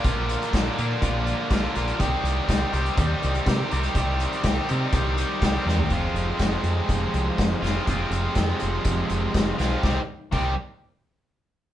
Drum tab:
CC |----------------|----------------|----------------|----------------|
HH |x-xxx-x-x-x-x-xx|x-x-x-xxx-xxx-xx|x-xxx-x-x-x-x---|x-x-x-x-x-x-x-x-|
SD |----o-------o---|----o-------o---|----o-------o-o-|----o-------o-o-|
FT |----------------|----------------|---------------o|----------------|
BD |o---o---o---o---|o---o---o---o---|o---o---o---o---|o---o---o---o---|

CC |----------------|----x-----------|
HH |x-x-x-x-x-x-x-x-|----------------|
SD |----o-------o-o-|o---------------|
FT |----------------|----------------|
BD |o---o---o---o---|o---o-----------|